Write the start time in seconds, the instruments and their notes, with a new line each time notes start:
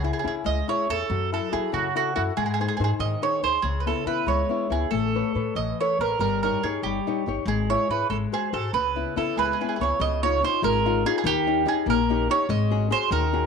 Already playing: nylon-string guitar C#3
0.03 nylon-string guitar C#4 E4 G#4, mandolin G#4
0.13 mandolin G#4
0.19 mandolin G#4
0.24 upright bass C#3, nylon-string guitar C#4 E4 G#4, mandolin G#4
0.44 upright bass C#2, nylon-string guitar G#3, mandolin D#5
0.68 nylon-string guitar C#4 E4 G#4, mandolin C#5
0.90 upright bass E2, nylon-string guitar C#4 E4 G#4, mandolin A4
1.10 upright bass F#2, nylon-string guitar F#3
1.32 nylon-string guitar E4 F#4 A4, mandolin A4
1.52 upright bass F#3, nylon-string guitar E4 F#4 A4, mandolin G#4
1.72 upright bass F#2, nylon-string guitar C#3, mandolin F#4
1.95 nylon-string guitar E4 F#4 A4, mandolin F#4
2.15 upright bass F#2, nylon-string guitar E4 F#4 A4, mandolin F#4
2.37 upright bass G#2, nylon-string guitar G#3, mandolin G#4
2.46 mandolin G#4
2.54 mandolin G#4
2.60 nylon-string guitar D#4 G#4 C5, mandolin G#4
2.68 mandolin G#4
2.77 upright bass G#2, nylon-string guitar D#4 G#4, mandolin G#4
2.81 mandolin G#4, nylon-string guitar C5
2.99 upright bass G#2, nylon-string guitar D#3, mandolin D#5
3.22 nylon-string guitar D#4 G#4 C5, mandolin C#5
3.43 upright bass D2, nylon-string guitar D#4 G#4 C5, mandolin C5
3.62 upright bass C#2, nylon-string guitar C#3, mandolin G#4
3.80 mandolin B4
3.86 nylon-string guitar B3 C#4 E4, mandolin A4
4.06 upright bass C#3, nylon-string guitar B3 C#4 E4, mandolin B4
4.26 upright bass C#2, nylon-string guitar G#3, mandolin C#5
4.49 nylon-string guitar B3 C#4 E4
4.70 upright bass C#2, nylon-string guitar B3 C#4 E4, mandolin G#4
4.91 upright bass A1, nylon-string guitar A3, mandolin A4
5.15 nylon-string guitar A4 B4 C#5
5.35 upright bass A2, nylon-string guitar A4 B4 C#5
5.55 upright bass A1, nylon-string guitar E3, mandolin D#5
5.80 nylon-string guitar A4 B4 C#5, mandolin C#5
5.99 upright bass A1, nylon-string guitar A4 B4 C#5, mandolin A#4
6.19 upright bass G1, nylon-string guitar G3, mandolin A#4
6.43 nylon-string guitar D#4 G4 C#5, mandolin A#4
6.63 upright bass G2, nylon-string guitar D#4 G4 C#5, mandolin G#4
6.83 upright bass G1, nylon-string guitar G3, mandolin G4
7.07 nylon-string guitar D#4 G4 C#5
7.26 upright bass G1, nylon-string guitar D#4 G4 C#5
7.46 upright bass G#1, nylon-string guitar G#3, mandolin G#4
7.70 nylon-string guitar E4 G#4 C#5, mandolin C#5
7.89 upright bass G#2, nylon-string guitar E4 G#4 C#5, mandolin B4
8.10 upright bass G#1, nylon-string guitar G#3, mandolin A4
8.32 nylon-string guitar F#4 G#4 C5, mandolin G#4
8.53 upright bass G#2, nylon-string guitar F#4 G#4 C5, mandolin A4
8.73 upright bass C#2, nylon-string guitar C#3, mandolin B4
8.95 nylon-string guitar B3 C#4 E4
9.16 upright bass C#3, nylon-string guitar B3 C#4 E4, mandolin A4
9.37 upright bass C#2, nylon-string guitar G#3, mandolin G#4 B4
9.45 mandolin G#4
9.53 mandolin G#4
9.61 nylon-string guitar B3 C#4 E4, mandolin G#4
9.69 mandolin G#4
9.76 upright bass C#2, mandolin G#4
9.80 nylon-string guitar B3 C#4 E4, mandolin G#4 C#5
10.00 upright bass C#2, nylon-string guitar C#3, mandolin D#5
10.23 nylon-string guitar C#4 D#4 F4, mandolin C#5
10.43 nylon-string guitar C#4 D#4 F4, mandolin C5
10.62 upright bass G#1, nylon-string guitar G#3, mandolin A#4
10.85 nylon-string guitar C#4 D#4 F4
11.06 nylon-string guitar C#4 D#4 F4, mandolin G#4
11.18 mandolin G#4
11.24 upright bass D#2, nylon-string guitar D#3, mandolin G4
11.47 nylon-string guitar C#4 D#4 G4
11.65 nylon-string guitar C#4 D#4 G4, mandolin G#4
11.86 upright bass A#1, nylon-string guitar A#3, mandolin A#4
12.09 nylon-string guitar C#4 D#4 G4
12.29 nylon-string guitar C#4 D#4 G4, mandolin C#5
12.49 upright bass G#1, nylon-string guitar G#3, mandolin D#5
12.71 nylon-string guitar C#4 F#4 G#4
12.90 nylon-string guitar C#4 F#4 G#4, mandolin C5
13.11 upright bass D#2, nylon-string guitar D#3, mandolin A#4
13.33 nylon-string guitar C#4 F#4 G#4